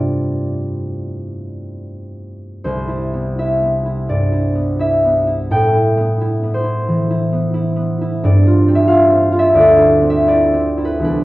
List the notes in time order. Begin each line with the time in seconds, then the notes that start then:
Already playing: G2 A3 C4 F4 C5 D5 F5
2.64 C2 C5
2.88 E4
3.13 B3
3.38 E4 E5
3.63 B3
3.86 E4
4.09 G2 D5
4.32 E4
4.55 B3
4.79 E4 E5
5.05 B3
5.27 E4
5.51 A2 G5
5.74 E4
5.97 B3
6.21 E4
6.44 B3
6.54 C5
6.64 E4
6.88 E3
7.10 E4
7.32 B3
7.54 E4
7.76 B3
8.01 E4
8.23 G2 D5
8.46 F4
8.68 C4
8.75 E5
8.87 F4 F5
9.10 C4
9.32 F4
9.39 E5
9.54 D2 D5
9.77 E4
10.02 C4
10.10 E5
10.28 E4 D5
10.53 C4
10.77 E4
10.85 B4
11.00 C2 E3 B3 D4
11.04 B4